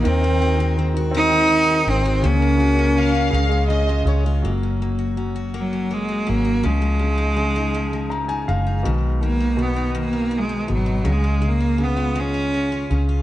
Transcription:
<<
  \new Staff \with { instrumentName = "Violin section" } { \time 6/8 \key fis \major \tempo 4. = 54 r2. | r4 eis''4 dis''8 cis''8 | r2. | r2. |
r2. | r2. | }
  \new Staff \with { instrumentName = "Steel-string acoustic guitar" } { \time 6/8 \key fis \major dis16 bis16 fis'16 gis16 bis16 fis'16 dis16 bis16 fis'16 gis16 bis16 fis'16 | ais16 cis'16 fis'16 ais16 cis'16 fis'16 gis16 cis'16 eis'16 gis16 cis'16 eis'16 | ais16 cis'16 ais16 fis'16 cis'16 fis'16 ais16 cis'16 ais16 fis'16 cis'16 fis'16 | eis16 gis16 eis16 dis'16 gis16 dis'16 eis16 gis16 eis16 dis'16 gis16 dis'16 |
dis8 dis16 dis'16 b16 dis'16 dis16 b16 dis16 dis'16 b16 dis'16 | gis16 cis'16 gis16 eis'16 cis'16 eis'16 gis16 cis'16 gis16 eis'16 cis'16 eis'16 | }
  \new Staff \with { instrumentName = "Cello" } { \time 6/8 \key fis \major bis4 r8 dis'4 bis8 | cis'2 r4 | r4. fis8 gis8 ais8 | gis2~ gis8 r8 |
r8 ais8 b8 ais8 gis8 fis8 | gis8 ais8 b8 cis'4 r8 | }
  \new Staff \with { instrumentName = "Grand piano" } { \time 6/8 \key fis \major r2. | r2. | r2. | r2 ais''16 gis''16 eis''8 |
r2. | r2. | }
  \new Staff \with { instrumentName = "Grand piano" } { \clef bass \time 6/8 \key fis \major dis16 dis16 dis16 dis16 dis16 dis16 bis16 dis16 dis16 dis16 dis16 dis16 | cis16 ais16 cis16 ais16 cis16 ais16 cis16 gis16 cis16 gis16 cis16 gis16 | fis8 fis8 fis4. fis8 | cis8 cis8 cis4. cis8 |
b,8 b,8 b,4. b,8 | cis8 cis8 cis4. cis8 | }
  \new Staff \with { instrumentName = "Fingered electric bass" } { \clef bass \time 6/8 \key fis \major dis,2~ dis,8 gis,,8 | cis,4. cis,4 cis,8 | fis,,2~ fis,,8 gis,,8 | cis,2~ cis,8 fis,,8 |
b,,2~ b,,8 gis,,8 | cis,2~ cis,8 cis,8 | }
>>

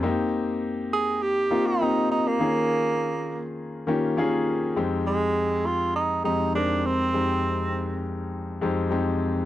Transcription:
<<
  \new Staff \with { instrumentName = "Tenor saxophone" } { \time 4/4 \key ees \mixolydian \tempo 4 = 101 r4. aes'8 g'8. ees'8. ees'16 bes16~ | bes4.~ bes16 r2 r16 | \key f \dorian r8 aes4 f'8 ees'8 ees'8 d'8 c'8~ | c'4. r2 r8 | }
  \new Staff \with { instrumentName = "Grand piano" } { \time 4/4 \key ees \mixolydian <bes c' ees' g'>4. r4 <bes c' ees' f'>8 <bes c' ees' g'>8. r16 | <ees bes des' f' aes'>4. r4 <ees bes des' f' g'>8 <ees bes des' f' aes'>8. r16 | \key f \dorian <f, aes c' ees' g'>4. r4 <f, aes c' ees' g'>8 <f, aes c' ees' bes'>8. r16 | <f, aes c' ees' g'>4. r4 <f, aes c' ees' g'>8 <f, aes c' ees' g'>8. r16 | }
>>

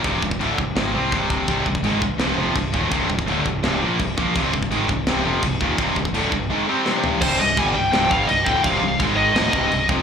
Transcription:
<<
  \new Staff \with { instrumentName = "Lead electric guitar" } { \time 4/4 \key c \minor \tempo 4 = 167 r1 | r1 | r1 | r1 |
r1 | c''8 ees''8 aes''8 g''8 g''8 f''8 ees''8 g''8 | f''4 r8 ees''2 r8 | }
  \new Staff \with { instrumentName = "Distorted electric guitar" } { \clef bass \time 4/4 \key c \minor <c, g, c>8 <c, g,>8 <d, a, d>8 <c, g,>8 <aes, ees aes>8 <c g c'>8 <c, g, c>4 | <c, g, c>8 <c, g,>8 <aes, ees aes>8 <c, g,>8 <c, g, c>8 <f, c f>8 <c, g,>8 <ees, bes, ees>8 | <c, g, c>8 <c, g,>8 <d, a, d>8 <c, g,>8 <c, g, c>8 <bes, f bes>8 <c, g,>8 <bes, f bes>8 | <c, g, c>8 <c, g,>8 <aes, ees aes>8 <c, g,>8 <c, g, c>8 <f, c f>8 <c, g,>8 <ees, bes, ees>8 |
<c, g, c>8 <c, g,>8 <d, a, d>8 <c, g,>8 <aes, ees aes>8 <c g c'>8 <c, g, c>4 | <c, g, c>8 <c, g,>8 <g, d g>8 <c, g,>8 <c, g, c>8 <g, d g>8 <c, g,>8 <d, a, d>8 | <c, g, c>8 <c, g,>8 <aes, ees aes>4 <d, a, d>8 <c, g, c>8 <c, g,>8 <f, c f>8 | }
  \new Staff \with { instrumentName = "Distorted electric guitar" } { \clef bass \time 4/4 \key c \minor <c, g, c>8 <c, g,>8 <d, a, d>8 <c, g,>8 <aes, ees aes>8 <c g c'>8 <c, g, c>4 | <c, g, c>8 <c, g,>8 <aes, ees aes>8 <c, g,>8 <c, g, c>8 <f, c f>8 <c, g,>8 <ees, bes, ees>8 | <c, g, c>8 <c, g,>8 <d, a, d>8 <c, g,>8 <c, g, c>8 <bes, f bes>8 <c, g,>8 <bes, f bes>8 | <c, g, c>8 <c, g,>8 <aes, ees aes>8 <c, g,>8 <c, g, c>8 <f, c f>8 <c, g,>8 <ees, bes, ees>8 |
<c, g, c>8 <c, g,>8 <d, a, d>8 <c, g,>8 <aes, ees aes>8 <c g c'>8 <c, g, c>4 | <c, g, c>8 <c, g,>8 <g, d g>8 <c, g,>8 <c, g, c>8 <g, d g>8 <c, g,>8 <d, a, d>8 | <c, g, c>8 <c, g,>8 <aes, ees aes>4 <d, a, d>8 <c, g, c>8 <c, g,>8 <f, c f>8 | }
  \new Staff \with { instrumentName = "Distorted electric guitar" } { \clef bass \time 4/4 \key c \minor r1 | <c, g, c>8 <c, g,>8 <aes, ees aes>8 <c, g,>8 <c, g, c>8 <f, c f>8 <c, g,>8 <ees, bes, ees>8 | <c, g, c>8 <c, g,>8 <d, a, d>8 <c, g,>8 <c, g, c>8 <bes, f bes>8 <c, g,>8 <bes, f bes>8 | <c, g, c>8 <c, g,>8 <aes, ees aes>8 <c, g,>8 <c, g, c>8 <f, c f>8 <c, g,>8 <ees, bes, ees>8 |
<c, g, c>8 <c, g,>8 <d, a, d>8 <c, g,>8 <aes, ees aes>8 <c g c'>8 <c, g, c>4 | <c, g, c>8 <c, g,>8 <g, d g>8 <c, g,>8 <c, g, c>8 <g, d g>8 <c, g,>8 <d, a, d>8 | <c, g, c>8 <c, g,>8 <aes, ees aes>4 <d, a, d>8 <c, g, c>8 <c, g,>8 <f, c f>8 | }
  \new Staff \with { instrumentName = "Fingered electric bass" } { \clef bass \time 4/4 \key c \minor c,,8 c,,8 d,,8 c,,8 aes,,8 c,8 c,,4 | c,,8 c,,8 aes,,8 c,,8 c,,8 f,,8 c,,8 ees,,8 | c,,8 c,,8 d,,8 c,,8 c,,8 bes,,8 c,,8 bes,,8 | c,,8 c,,8 aes,,8 c,,8 c,,8 f,,8 c,,8 ees,,8 |
c,,8 c,,8 d,,8 c,,8 r2 | c,,8 c,,8 g,,8 c,,8 c,,8 g,,8 c,,8 d,,8 | c,,8 c,,8 aes,,4 d,,8 c,,8 c,,8 f,,8 | }
  \new DrumStaff \with { instrumentName = "Drums" } \drummode { \time 4/4 <cymc bd>8 bd16 bd16 cymc8 bd8 <cymc sn>4 <cymc bd>8 bd8 | <cymc bd>8 bd16 bd16 cymc8 bd8 <cymc sn>4 <cymc bd>8 bd8 | <cymc bd>8 bd16 bd16 cymc8 bd8 <cymc sn>4 <cymc bd>8 bd8 | <cymc bd>8 bd16 bd16 cymc8 bd8 <cymc sn>4 <cymc bd>8 bd8 |
<cymc bd>8 bd16 bd16 cymc8 bd8 r4 sn8 tomfh8 | <cymc bd>4 <cymc bd>4 <cymc sn>8 bd8 cymc8 bd8 | <cymc bd>4 <cymc bd>4 <cymc sn>8 bd8 cymc8 bd8 | }
>>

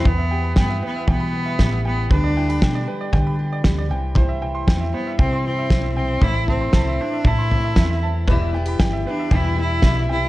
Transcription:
<<
  \new Staff \with { instrumentName = "Upright piano" } { \time 4/4 \key e \minor \tempo 4 = 117 b'16 e''16 g''16 b''16 g''16 e''16 b'16 e''16 g''16 b''8 e''8 e''16 g''8 | b'16 d''16 g''16 b''16 g''16 d''16 b'16 d''16 g''16 b''8 d''8 d''16 g''8 | c''16 e''16 g''16 c'''16 g''16 e''16 c''16 e''16 g''16 c'''8 e''8 e''16 g''8 | c''16 e''16 a''16 c'''16 a''16 e''16 c''16 e''16 a''16 c'''8 e''8 e''16 a''8 |
b'16 e''16 g''16 b''16 g''16 e''16 b'16 e''16 g''16 b''8 e''8 e''16 g''8 | }
  \new Staff \with { instrumentName = "Cello" } { \time 4/4 \key e \minor b4 b8 b8 b4. b8 | d'4. r2 r8 | r4. b8 c'8 c'4 c'8 | e'8 c'4 d'8 e'4. r8 |
r4. d'8 e'8 e'4 e'8 | }
  \new Staff \with { instrumentName = "Steel-string acoustic guitar" } { \time 4/4 \key e \minor << { b8 g'4 b8 g8 b8 g'8 b8 | <g b g'>8 e'16 g'8. g'8 b8 g'8 g'8 <e g c' e'>8 | e'4 c'8 g8 c'8 e'8 c'8 c'8 | <e a c'>8 e'4 c'8 a8 c'8 c'8 c'8 |
b8 e'16 g'8. b8 g8 b4. | } \\ { e,4 e4 b,4 e4 | d4 g4 d4 g8 c8~ | c8 e4 g,4 e4 c8 | a,4 e4 e,4 e4 |
e,4 e4 b,4 b,8 c8 | } >> }
  \new Staff \with { instrumentName = "Steel-string acoustic guitar" } { \clef bass \time 4/4 \key e \minor r1 | r1 | r1 | r1 |
<e, b, e g b e'>8 <e g b e'>4 <e g b e'>8 <e, b, e g b e'>8 <e g b e'>8 <e g b e'>8 <e g b e'>8 | }
  \new Staff \with { instrumentName = "Fingered electric bass" } { \clef bass \time 4/4 \key e \minor e,4 g,8 r8 e4 a,,4 | d,4 b,8 r8 d4 d,8 c,8~ | c,4 e,8 r8 c4 b,,4 | a,,4 c,8 r8 a,4 e,4 |
e,,4 g,,8 r8 e,4 b,,4 | }
  \new DrumStaff \with { instrumentName = "Drums" } \drummode { \time 4/4 <bd tomfh>4 <bd sn>4 <bd tomfh>4 <bd sn>4 | <bd tomfh>4 <bd sn>4 <bd tomfh>4 <bd sn>4 | <bd tomfh>4 <bd sn>4 <bd tomfh>4 <bd sn>4 | <bd tomfh>8 tomfh8 <bd sn>4 <bd tomfh>8 tomfh8 <bd sn>4 |
<bd tomfh>4 <bd sn>4 <bd tomfh>4 <bd sn>4 | }
>>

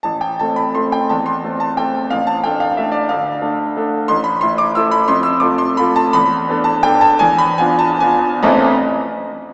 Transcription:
\new Staff \with { instrumentName = "Grand piano" } { \time 3/4 \key a \minor \tempo 4 = 173 << { a''8 g''8 a''8 b''8 c'''8 g''8 | a''8 c'''4 a''8 g''4 | f''8 a''8 g''8 f''8 e''8 d''8 | f''2~ f''8 r8 |
c'''8 b''8 c'''8 d'''8 e'''8 b''8 | c'''8 e'''8 d'''8 c'''8 b''8 a''8 | b''4. a''8 g''8 a''8 | gis''8 b''8 gis''8 a''8 gis''4 |
<a,, e, e a c' e' a''>8 r2 r8 | } \\ { a,,4 <a c' a'>4 <a c' a'>4 | e,4 <a c' a'>4 <a c' a'>4 | a,,4 <a d' a'>4 <a d' a'>4 | d,4 <a d' a'>4 <a d' a'>4 |
a,,4 <a e' a'>4 <a e' a'>4 | f,4 <a f' a'>4 <a f' a'>4 | e,4 <b d' a'>4 <b d' a'>4 | e,4 <b d' f'>4 <b d' f'>4 |
r2. | } >> }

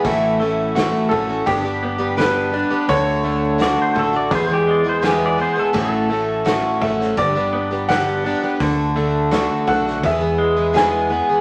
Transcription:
<<
  \new Staff \with { instrumentName = "Grand piano" } { \time 4/4 \key a \mixolydian \tempo 4 = 84 r4. a'8 g'4 b'4 | cis''4 r2. | r4. e''8 d''4 fis''4 | r4. fis''8 e''4 gis''4 | }
  \new Staff \with { instrumentName = "Pedal steel guitar" } { \time 4/4 \key a \mixolydian e'4~ e'16 r2 r8. | r4 d''16 c''16 a'16 d''16 c''16 g'16 d''16 c''16 g'16 d''16 c''16 a'16 | a'4~ a'16 r2 r8. | r1 | }
  \new Staff \with { instrumentName = "Twelve-string acoustic guitar" } { \time 4/4 \key a \mixolydian <a, e a cis' fis'>8 <e a cis' fis'>8 <a, e a cis' fis'>8 <e a cis' fis'>16 <a cis' fis'>16 <g, d g b d' g'>16 <g b d' g'>8 <g b d' g'>16 <g, d g b d' g'>8 <g b d' g'>16 <g b d' g'>16 | <d a d' fis'>8 <d a d' fis'>8 <d a d' fis'>8 <d a d' fis'>16 <a d' fis'>16 <e, b, e gis b gis'>16 <e gis b gis'>8 <e gis b gis'>16 <e, b, e gis b gis'>8 <e gis b gis'>16 <e gis b gis'>16 | <a, e a cis' fis'>8 <e a cis' fis'>8 <a, e a cis' fis'>8 <e a cis' fis'>16 <a cis' fis'>16 <g, d g b d' g'>16 <g b d' g'>8 <g b d' g'>16 <g, d g b d' g'>8 <g b d' g'>16 <g b d' g'>16 | <d a d' fis'>8 <d a d' fis'>8 <d a d' fis'>8 <d a d' fis'>16 <a d' fis'>16 <e, b, e gis b gis'>16 <e gis b gis'>8 <e gis b gis'>16 <e, b, e gis b gis'>8 <e gis b gis'>16 <e gis b gis'>16 | }
  \new Staff \with { instrumentName = "Clean electric guitar" } { \time 4/4 \key a \mixolydian a,8 a8 fis'8 a8 g,8 b8 g'8 d'8 | d8 a8 fis'8 a8 e,8 gis8 gis'8 b8 | a,8 a8 fis'8 a8 g,8 b8 g'8 d'8 | d8 a8 fis'8 a8 e,8 gis8 gis'8 b8 | }
  \new Staff \with { instrumentName = "Picked electric bass" } { \clef bass \time 4/4 \key a \mixolydian a,,4. a,,8 g,,2 | d,4. a,,8 e,2 | a,,4. a,,8 g,,2 | d,4. b,,8 e,2 | }
  \new DrumStaff \with { instrumentName = "Drums" } \drummode { \time 4/4 <hho bd>4 <hho sn>8 bd8 <hho bd>4 <hho sn>4 | <hho bd>4 <hho sn>8 bd8 <hho bd>4 <hho sn>4 | <hho bd>4 <hho sn>8 bd16 sn16 <hho bd>4 <hho sn>4 | <hho bd>4 <hho sn>8 bd16 sn16 <hho bd>4 <hho sn>4 | }
>>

